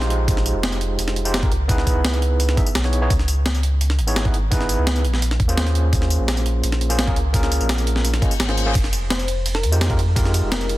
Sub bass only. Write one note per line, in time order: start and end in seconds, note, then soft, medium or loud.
0.00 0.53 A#1 loud
0.55 0.97 F1 loud
0.99 1.50 F1 medium
1.52 1.94 C#2 medium
1.96 2.56 C#2 loud
2.75 3.09 B1 loud
3.10 4.00 C#2 loud
3.99 4.77 G#1 loud
4.78 5.06 C#2 loud
5.05 5.38 A#1 loud
5.40 6.18 D#2 loud
6.19 6.62 A#1 loud
6.63 7.15 A#1 medium
7.16 7.59 C#2 medium
7.61 8.21 A#1 loud
8.40 8.74 G#1 loud
8.75 9.65 F1 loud
9.63 10.41 F2 loud
10.43 10.78 F1 loud